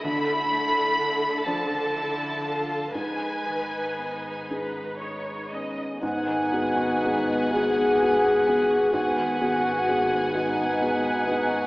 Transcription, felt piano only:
\new Staff \with { instrumentName = "Felt piano" } { \time 6/8 \key gis \minor \tempo 4. = 42 d,4. <f d'>4. | gis,4. <dis' gis'>4. | gis,8 <b fis' gis'>8 <b fis' gis'>8 <b fis' gis'>8 <b fis' gis'>8 <b fis' gis'>8 | gis,8 <b fis' gis'>8 <b fis' gis'>8 <b fis' gis'>8 <b fis' gis'>8 <b fis' gis'>8 | }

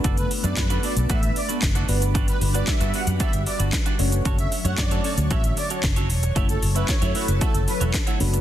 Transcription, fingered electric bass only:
\new Staff \with { instrumentName = "Fingered electric bass" } { \clef bass \time 4/4 \key fis \phrygian \tempo 4 = 114 fis,,8 r16 fis,16 fis,8 r16 b,,16 a,,8 r8 fis,,8 g,,8~ | g,,8 g,,8 r16 g,16 r16 fis,16 r16 g,,16 r16 g,,16 r8 fis,,8 | fis,,8 r16 fis,16 fis,8 r16 d,16 a,,8 r8 fis,,8 e,,8 | fis,,8 fis,,8 r16 fis,16 r16 fis,,16 r16 fis,,16 r16 e,,16 r8 fis,,8 | }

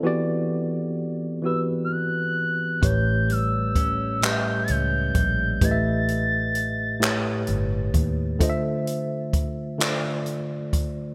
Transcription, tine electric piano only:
\new Staff \with { instrumentName = "Tine electric piano" } { \time 6/8 \key e \phrygian \tempo 4. = 43 << { <e b fis' g' d''>4. <e b fis' g' b'>4. | <a, a g' b' cis''>4. <a, a g' b' dis'' e''>4. | <a, a g' b' dis'' e''>4. <a, a g' b' cis''>4. | <d a f' c'' dis'' e''>4. <d a f' c'' d''>4. | } \\ { <c' a'>16 r2 r8. | r2. | r2. | r2. | } >> }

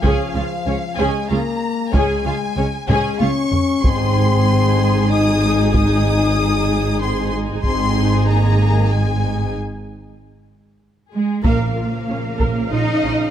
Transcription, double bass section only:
\new Staff \with { instrumentName = "Double bass section" } { \clef bass \time 3/4 \key aes \mixolydian \tempo 4 = 95 des,8 des,8 des,8 des,8 des,8 r8 | des,8 des,8 des,8 des,8 des,8 r8 | aes,,2.~ | aes,,2. |
aes,,2. | r2. | bes,,8 bes,,8 bes,,8 bes,,8 bes,,8 bes,,8 | }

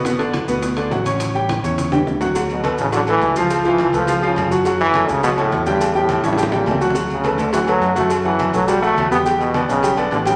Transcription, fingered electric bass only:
\new Staff \with { instrumentName = "Fingered electric bass" } { \clef bass \time 4/4 \key d \major \tempo 4 = 209 g,,4. d,4. a,,4~ | a,,4. e,4. d,4~ | d,4. a,,4. cis,4~ | cis,4. cis,4. fis,4~ |
fis,4. cis,4. e,4~ | e,4. a,,4. d,4~ | d,4. d,4. fis,4~ | fis,4. b,,4. e,4~ |
e,4. b,,4. a,,4 | }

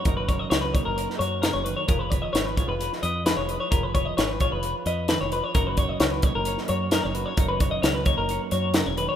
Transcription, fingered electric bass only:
\new Staff \with { instrumentName = "Fingered electric bass" } { \clef bass \time 4/4 \key fis \major \tempo 4 = 131 fis,,4 cis,8. fis,,8 r16 fis,8. fis,,8 r16 | eis,,4 gis,,8. eis,,8 r16 eis,8. eis,,8 r16 | eis,,4 gis,,8. eis,,8 r16 eis,8. eis,,8 r16 | fis,,4 cis,8. fis,,8 r16 fis,8. fis,,8 r16 |
fis,,4 cis,8. fis,,8 r16 fis,8. e,,8 r16 | }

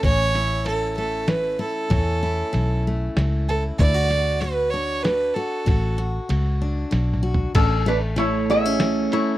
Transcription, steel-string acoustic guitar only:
\new Staff \with { instrumentName = "Steel-string acoustic guitar" } { \time 3/4 \key a \major \tempo 4 = 96 << { cis'8 e'4 a4 e'8 | cis'8 e'4 a4 e'8 | e'16 fis'16 fis'4 d'4 fis'8 | fis'8 fis'4 d'4 fis'8 |
r8 a4 b16 cis'8. a8 | } \\ { a,4 e4 e4 | a,4 e4 e4 | d4 a4 a4 | d4 a4 a4 |
a,4 e4 e4 | } >> }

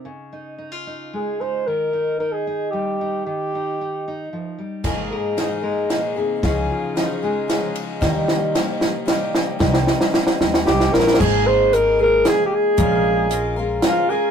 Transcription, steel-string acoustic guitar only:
\new Staff \with { instrumentName = "Steel-string acoustic guitar" } { \time 3/4 \key aes \major \tempo 4 = 113 << { r8 ees'8 ees'16 f'16 ees'4 ees'8 | r8 ees'8 ees'8 ees'4 ees'8 | r8 ees'8 ees'8 ees'4. | bes'8 bes'8 ees'8 bes'4. |
aes'8 f'8 ees'8 aes'4. | r2. | r2. | r2. |
r2. | } \\ { des2 aes4 | ees2 g4 | ees2 f8 g8 | aes,4. aes8 bes,8 c8 |
des4. aes4. | r2. | r2. | r2. |
r2. | } >> }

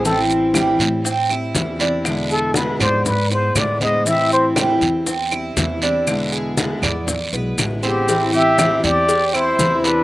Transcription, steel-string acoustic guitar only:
\new Staff \with { instrumentName = "Steel-string acoustic guitar" } { \time 4/4 \key a \minor \tempo 4 = 119 <e g c' e'>4 <e g c' e'>8 <g c' e'>8 r8 <g c' e'>8 <e g c' e'>8 <g c' e'>8 | <b, d gis b e'>4 <b, d gis b e'>8 <gis b e'>8 r8 <gis b e'>8 <d gis b e'>8 <d gis b e'>8 | <e g c' e'>4 <e g c' e'>8 <g c' e'>8 r8 <g c' e'>8 <e g c' e'>8 <g c' e'>8 | <b, d gis b e'>4 <b, d gis b e'>8 <gis b e'>8 r8 <gis b e'>8 <d gis b e'>8 <d gis b e'>8 |
<e g c' e'>8 <g c' e'>8 <e g c' e'>8 <g c' e'>8 r8 <g c' e'>8 <e g c' e'>4 | }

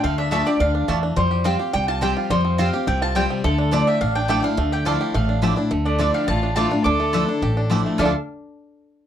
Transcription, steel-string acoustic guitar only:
\new Staff \with { instrumentName = "Steel-string acoustic guitar" } { \time 4/4 \key d \minor \tempo 4 = 211 << { r4 <d a d' f'>8 <d' f'>8 r2 | r4 <f g c' g'>8 <c' g'>8 r4 <f g c' g'>4 | r4 <f g c' g'>8 <c' g'>8 r4 <f g c' g'>4 | r4 <f a d' e'>4 r4 <f a d' e'>8 <d' e'>8 |
r4 <f a d' e'>4 r4 <f a d' e'>8 <d' e'>8 | r4 <f a d' e'>4 r4 <f a d' e'>8 <d' e'>8 | r4 <f a d' e'>8 <d' e'>8 r4 <f a d' e'>4 | <d f a d' e'>8 r2. r8 | } \\ { d2 d4 e4 | f2 c2 | f2 c2 | d2 a,2 |
d2 a,2 | d2 a,2 | d2 a,2 | r1 | } >> }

